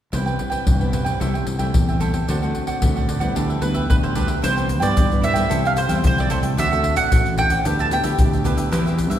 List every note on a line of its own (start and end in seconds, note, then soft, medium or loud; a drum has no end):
0.12 0.36 C2 medium
0.12 0.64 C3 soft
0.12 0.29 G3 soft
0.12 0.29 B3 soft
0.12 0.25 E4 medium
0.12 0.29 E4 soft
0.12 0.26 B4 medium
0.12 0.25 C5 medium
0.12 0.24 G5 medium
0.12 pandeiro medium
0.12 surdo medium
0.26 0.50 B4 soft
0.26 0.51 C5 soft
0.26 0.49 G5 soft
0.26 pandeiro soft
0.39 0.65 G3 soft
0.39 0.65 B3 soft
0.39 0.65 E4 soft
0.39 pandeiro medium
0.39 surdo soft
0.50 0.78 B4 medium
0.50 0.79 C5 medium
0.50 0.78 G5 medium
0.50 pandeiro medium
0.50 surdo soft
0.66 1.12 C2 medium
0.66 1.18 G2 medium
0.66 pandeiro medium
0.66 surdo medium
0.79 1.17 G3 medium
0.79 1.17 B3 medium
0.79 1.17 E4 medium
0.79 0.92 B4 soft
0.79 0.91 C5 soft
0.79 0.92 G5 soft
0.79 pandeiro soft
0.92 1.05 E4 soft
0.92 1.04 B4 soft
0.92 1.05 C5 soft
0.92 1.03 G5 medium
0.92 pandeiro medium
1.04 1.19 B4 soft
1.04 1.20 C5 medium
1.04 1.18 G5 medium
1.04 pandeiro medium
1.04 surdo soft
1.20 1.44 C2 medium
1.20 1.72 C3 medium
1.20 1.56 G3 medium
1.20 1.57 A3 soft
1.20 1.57 E4 medium
1.20 1.33 A4 medium
1.20 1.33 C5 medium
1.20 1.33 E5 medium
1.20 1.32 G5 medium
1.20 pandeiro medium
1.20 surdo medium
1.34 1.46 C5 soft
1.34 1.46 E5 soft
1.34 1.46 G5 soft
1.34 pandeiro soft
1.46 1.70 C2 medium
1.46 muted cavaquinho stroke soft
1.46 pandeiro medium
1.59 1.96 G3 medium
1.59 1.96 A3 medium
1.59 1.96 E4 medium
1.59 1.87 C5 medium
1.59 1.86 E5 medium
1.59 1.86 G5 medium
1.59 pandeiro medium
1.59 surdo soft
1.74 2.20 E2 medium
1.74 2.25 C3 soft
1.74 pandeiro medium
1.74 surdo medium
1.88 2.00 C5 soft
1.88 2.00 E5 soft
1.88 2.01 G5 soft
1.88 pandeiro soft
2.00 2.17 G3 soft
2.00 2.17 A3 soft
2.00 2.17 E4 soft
2.00 2.13 A4 medium
2.00 2.14 C5 medium
2.00 2.13 E5 medium
2.00 2.12 G5 medium
2.00 pandeiro medium
2.00 surdo soft
2.13 2.27 C5 soft
2.13 2.27 E5 soft
2.13 2.26 G5 soft
2.13 pandeiro medium
2.28 2.51 D2 medium
2.28 2.80 D3 soft
2.28 2.38 A3 medium
2.28 2.38 C4 medium
2.28 2.41 D4 medium
2.28 2.38 F#4 medium
2.28 2.41 C5 medium
2.28 2.41 D5 medium
2.28 2.41 F#5 medium
2.28 pandeiro medium
2.28 surdo medium
2.42 2.79 A3 medium
2.42 2.79 C4 medium
2.42 2.79 F#4 medium
2.42 2.68 C5 soft
2.42 2.67 D5 soft
2.42 2.66 F#5 soft
2.42 pandeiro soft
2.55 pandeiro medium
2.55 surdo soft
2.67 2.95 C5 medium
2.67 2.94 D5 medium
2.67 2.94 F#5 medium
2.67 pandeiro medium
2.67 surdo soft
2.82 3.28 D2 medium
2.82 3.34 A2 soft
2.82 3.08 A3 soft
2.82 3.08 C4 medium
2.82 3.08 F#4 medium
2.82 pandeiro medium
2.82 surdo medium
2.96 3.07 C5 soft
2.96 3.08 D5 soft
2.96 3.08 F#5 soft
2.96 pandeiro soft
3.07 3.21 D4 soft
3.07 3.21 C5 soft
3.07 3.20 D5 medium
3.07 3.19 F#5 soft
3.07 pandeiro medium
3.20 3.58 G3 medium
3.20 3.58 B3 medium
3.20 3.58 E4 medium
3.20 3.35 C5 medium
3.20 3.34 D5 medium
3.20 3.34 F#5 medium
3.20 pandeiro soft
3.20 surdo soft
3.35 3.59 D2 medium
3.35 3.87 D3 medium
3.35 3.48 D4 medium
3.35 3.49 G4 medium
3.35 3.49 B4 medium
3.35 3.48 E5 medium
3.35 pandeiro medium
3.35 surdo soft
3.49 3.60 G4 soft
3.49 3.61 B4 soft
3.49 3.61 E5 soft
3.49 pandeiro soft
3.61 3.85 D2 medium
3.61 4.12 G3 medium
3.61 4.12 B3 medium
3.61 4.12 E4 medium
3.61 3.89 B4 medium
3.61 muted cavaquinho stroke soft
3.61 pandeiro medium
3.74 4.02 G4 medium
3.74 4.02 B4 medium
3.74 4.01 E5 medium
3.74 pandeiro medium
3.74 surdo soft
3.90 4.36 D2 medium
3.90 4.41 D3 soft
3.90 3.95 B4 medium
3.90 pandeiro medium
3.90 surdo medium
4.03 4.15 G4 soft
4.03 4.16 B4 soft
4.03 4.15 C5 medium
4.03 4.16 E5 soft
4.03 pandeiro soft
4.15 4.33 G3 soft
4.15 4.33 B3 soft
4.15 4.28 D4 medium
4.15 4.34 E4 medium
4.15 4.28 G4 medium
4.15 4.41 B4 medium
4.15 4.27 B4 medium
4.15 4.26 E5 medium
4.15 pandeiro medium
4.27 4.42 G4 soft
4.27 4.42 B4 soft
4.27 4.41 E5 soft
4.27 pandeiro medium
4.42 4.82 C2 medium
4.42 4.95 C3 medium
4.42 4.69 G3 medium
4.42 4.69 B3 medium
4.42 4.55 E4 medium
4.42 4.69 E4 medium
4.42 4.56 B4 medium
4.42 4.56 C5 medium
4.42 4.81 C5 medium
4.42 4.55 G5 medium
4.42 pandeiro medium
4.42 shaker medium
4.42 surdo medium
4.56 4.68 B4 soft
4.56 4.68 C5 soft
4.56 4.68 G5 soft
4.56 pandeiro soft
4.56 shaker soft
4.69 muted cavaquinho stroke soft
4.69 pandeiro medium
4.69 shaker medium
4.69 surdo soft
4.80 4.94 G2 medium
4.80 5.05 G3 medium
4.80 5.05 B3 medium
4.80 5.06 E4 medium
4.80 5.22 B4 medium
4.80 5.21 C5 medium
4.80 5.25 D5 medium
4.80 5.21 G5 medium
4.80 pandeiro medium
4.80 shaker medium
4.80 surdo soft
4.96 5.48 G2 medium
4.96 5.42 G2 medium
4.96 pandeiro medium
4.96 shaker medium
4.96 surdo loud
5.10 5.33 G3 medium
5.10 5.33 B3 medium
5.10 5.34 E4 medium
5.10 pandeiro soft
5.10 shaker soft
5.21 5.35 E4 soft
5.21 5.33 B4 medium
5.21 5.35 C5 soft
5.21 5.61 E5 medium
5.21 5.32 G5 soft
5.21 pandeiro medium
5.21 shaker medium
5.34 5.86 G3 medium
5.34 5.86 A3 medium
5.34 5.86 E4 medium
5.34 5.48 B4 medium
5.34 5.49 C5 soft
5.34 5.48 G5 medium
5.34 pandeiro medium
5.34 shaker medium
5.34 surdo soft
5.49 5.85 C2 medium
5.49 6.01 C3 medium
5.49 5.62 A4 medium
5.49 5.63 C5 medium
5.49 5.63 E5 medium
5.49 5.63 G5 medium
5.49 pandeiro medium
5.49 shaker medium
5.49 surdo medium
5.64 5.75 C5 soft
5.64 5.76 E5 soft
5.64 5.72 F5 medium
5.64 5.76 G5 soft
5.64 pandeiro soft
5.64 shaker soft
5.76 6.05 C5 medium
5.76 muted cavaquinho stroke soft
5.76 pandeiro medium
5.76 shaker medium
5.89 6.01 E2 medium
5.89 6.26 G3 medium
5.89 6.26 A3 medium
5.89 6.26 E4 medium
5.89 6.17 C5 medium
5.89 6.16 E5 medium
5.89 6.16 G5 medium
5.89 pandeiro medium
5.89 shaker medium
5.89 surdo soft
6.04 6.39 C2 medium
6.04 6.55 C3 medium
6.04 6.18 C5 medium
6.04 pandeiro medium
6.04 shaker medium
6.04 surdo medium
6.18 6.29 C5 soft
6.18 6.31 D5 medium
6.18 6.30 E5 soft
6.18 6.30 G5 soft
6.18 pandeiro soft
6.18 shaker soft
6.30 6.46 G3 soft
6.30 6.47 A3 medium
6.30 6.47 E4 medium
6.30 6.43 A4 medium
6.30 6.43 C5 medium
6.30 6.39 C5 medium
6.30 6.42 E5 medium
6.30 6.41 G5 medium
6.30 pandeiro medium
6.30 shaker medium
6.30 surdo soft
6.42 6.58 C2 medium
6.42 6.57 C5 soft
6.42 6.56 E5 soft
6.42 6.56 G5 soft
6.42 pandeiro medium
6.42 shaker medium
6.57 6.97 D2 medium
6.57 7.09 D3 medium
6.57 6.66 A3 medium
6.57 6.66 C4 soft
6.57 6.70 D4 medium
6.57 6.66 F#4 medium
6.57 6.71 C5 medium
6.57 6.71 D5 medium
6.57 6.96 E5 medium
6.57 6.70 F#5 medium
6.57 pandeiro medium
6.57 shaker medium
6.57 surdo medium
6.71 7.08 A3 medium
6.71 7.08 C4 soft
6.71 7.08 F#4 medium
6.71 6.83 C5 soft
6.71 6.83 D5 soft
6.71 6.83 F#5 soft
6.71 pandeiro soft
6.71 shaker soft
6.84 muted cavaquinho stroke soft
6.84 pandeiro medium
6.84 surdo soft
6.96 7.09 A1 medium
6.96 7.38 C5 soft
6.96 7.37 D5 medium
6.96 7.37 F#5 medium
6.96 7.35 F#5 medium
6.96 pandeiro medium
6.96 shaker medium
6.96 surdo soft
7.11 7.58 A1 medium
7.11 7.62 A2 soft
7.11 7.46 A3 medium
7.11 7.46 C4 soft
7.11 7.46 F#4 medium
7.11 pandeiro medium
7.11 shaker medium
7.11 surdo loud
7.26 pandeiro soft
7.26 shaker soft
7.38 7.51 D4 soft
7.38 7.51 C5 soft
7.38 7.50 D5 soft
7.38 7.49 F#5 medium
7.38 7.80 G5 medium
7.38 pandeiro medium
7.50 7.65 C5 soft
7.50 7.64 D5 medium
7.50 7.64 F#5 medium
7.50 pandeiro medium
7.50 shaker medium
7.50 surdo soft
7.65 8.00 D2 medium
7.65 8.17 D3 medium
7.65 7.81 B3 medium
7.65 7.78 D4 medium
7.65 7.81 E4 medium
7.65 7.82 G4 medium
7.65 7.78 G4 medium
7.65 7.78 B4 medium
7.65 7.78 E5 medium
7.65 pandeiro medium
7.65 shaker medium
7.65 surdo soft
7.79 7.91 G4 soft
7.79 7.91 B4 soft
7.79 7.91 E5 soft
7.79 7.93 A5 medium
7.79 pandeiro soft
7.79 shaker soft
7.91 8.01 B3 medium
7.91 8.01 E4 medium
7.91 8.01 G4 medium
7.91 8.43 G5 medium
7.91 muted cavaquinho stroke soft
7.91 pandeiro medium
7.91 shaker medium
8.03 8.16 D2 medium
8.03 8.41 B3 medium
8.03 8.41 E4 medium
8.03 8.41 G4 medium
8.03 8.31 G4 medium
8.03 8.31 B4 medium
8.03 8.30 E5 medium
8.03 pandeiro medium
8.03 shaker medium
8.03 surdo soft
8.18 8.53 D2 medium
8.18 8.70 D3 medium
8.18 pandeiro medium
8.18 shaker medium
8.18 surdo loud
8.33 8.44 G4 soft
8.33 8.44 B4 soft
8.33 8.45 E5 soft
8.33 pandeiro soft
8.33 shaker soft
8.44 8.70 B3 medium
8.44 8.57 D4 medium
8.44 8.70 E4 soft
8.44 8.58 G4 medium
8.44 8.71 G4 medium
8.44 8.57 B4 medium
8.44 8.56 E5 medium
8.44 pandeiro medium
8.44 shaker medium
8.57 8.72 D2 medium
8.57 8.71 G4 soft
8.57 8.71 B4 soft
8.57 8.70 E5 soft
8.57 pandeiro medium
8.57 shaker medium
8.71 9.10 E2 medium
8.71 9.19 E3 medium
8.71 8.81 B3 medium
8.71 8.81 C4 medium
8.71 8.84 E4 medium
8.71 8.81 G4 medium
8.71 8.85 B4 medium
8.71 8.85 C5 medium
8.71 8.85 E5 medium
8.71 pandeiro medium
8.71 shaker medium
8.71 surdo medium
8.86 9.19 B3 medium
8.86 9.19 C4 medium
8.86 9.19 G4 medium
8.86 8.97 B4 soft
8.86 8.96 C5 soft
8.86 8.97 E5 soft
8.86 pandeiro soft
8.86 shaker soft
8.98 muted cavaquinho stroke soft
8.98 pandeiro medium
8.98 shaker medium
8.98 surdo soft
9.10 9.19 G2 medium
9.10 9.19 B4 medium
9.10 9.19 C5 medium
9.10 9.19 E5 medium
9.10 pandeiro medium
9.10 shaker medium
9.10 surdo soft